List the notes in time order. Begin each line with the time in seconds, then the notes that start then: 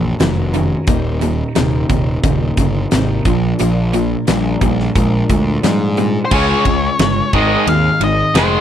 Already playing: A#1 F#2 E3 A#3 C#4 F#4 A#4
0.19 F1 F#2 D#3 F#3 A#3 C#4 F#4 A#4, snare, closed hi-hat
0.53 F#2 D#3 C#4 F#4 A#4, closed hi-hat
0.87 D#1 D#2 A#2 D#3 A#3 D#4 G4 A#4, kick, closed hi-hat
1.21 D#2 A#2 D#4 G4 A#4, closed hi-hat
1.55 D#1 D#2 C3 D#3 A#3 D#4 G4 A#4, snare, closed hi-hat
1.89 D#1 D#2 C3 D#4 G4 A#4, kick, closed hi-hat
2.23 D#1 D#2 C#3 A#3 D#4 G4 A#4, kick, closed hi-hat
2.57 G1 D#2 C#3, kick, closed hi-hat
2.91 G#1 D#2 C3 D#3 A#3 D#4 G4 A#4, snare, closed hi-hat
3.25 A#1 A#2 F3 A#3 D4 F4 A#4, kick, closed hi-hat
3.58 A#1 A#2 F3 A#3 D4 F4 A#4, closed hi-hat
3.92 A#2 F3 A#3 D4 F4 A#4, closed hi-hat
4.27 A#1 A#2 F3 G3 A#3 D4 F4 A#4, snare, closed hi-hat
4.61 A#1 A#2 G3 A#3 D4 F4 A#4, kick, closed hi-hat
4.80 snare
4.94 A#1 A#2 G#3 A#3 D4 F4 A#4, kick, closed hi-hat
5.29 D2 A#2 G#3, kick, closed hi-hat
5.63 G#2 A#2 F3 G3 A#3 D4 F4 A#4, snare, closed hi-hat
5.97 A#2 G3 A#3 D4 F4 A#4, closed hi-hat
6.25 C5
6.31 C#2 C#3 G#3 C#4 F4 G#4 C#5, kick, crash
6.65 C#2 C#3 G#3 C#4 F4 G#4, kick, ride
6.99 G1 C#3 G#3 C#4 F4 G#4, snare, ride
7.33 G#1 G#2 D#3 G#3 C4 D#4 G#4 D#5, kick, ride
7.67 D#2 G#2 D#3 G#3 C4 D#4 G#4 F5, ride
8.00 G#1 G#2 D#3 D#5, ride
8.35 F1 G#2 D#3 G#3 C4 D#4 G#4 C5, snare, ride